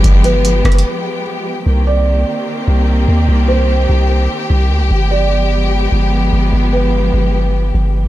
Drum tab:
HH |x--x--x--xxx------------|------------------------|------------------------|------------------------|
SD |---------r--------------|------------------------|------------------------|------------------------|
BD |o--------o--------------|------------------------|------------------------|------------------------|

HH |------------------------|
SD |------------------------|
BD |------------------------|